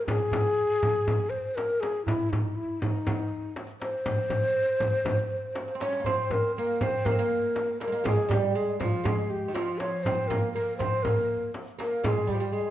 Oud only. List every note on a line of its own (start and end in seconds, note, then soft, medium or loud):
5.75 5.81 C4 medium
5.82 6.00 C#4 medium
6.00 6.06 A#3 medium
6.06 6.57 C4 medium
6.58 6.83 A#3 medium
6.82 7.07 C4 medium
7.05 7.13 A#3 medium
7.11 7.19 C4 medium
7.19 7.80 A#3 medium
7.81 7.87 A#3 medium
7.87 7.92 G#3 medium
7.92 8.03 A#3 medium
8.04 8.28 G#3 medium
8.28 8.53 G3 medium
8.55 8.81 G#3 medium
8.80 9.06 F3 medium
9.04 9.48 G#3 medium
9.48 9.54 D#3 medium
9.54 10.06 F3 medium
10.06 10.31 C4 medium
10.30 10.54 A#3 medium
10.56 10.78 A#3 medium
10.79 11.05 C4 medium
11.05 11.49 A#3 medium
11.79 12.03 A#3 medium
12.04 12.27 G#3 medium
12.27 12.34 G3 medium
12.34 12.41 F3 medium
12.40 12.52 G3 medium
12.52 12.70 G#3 medium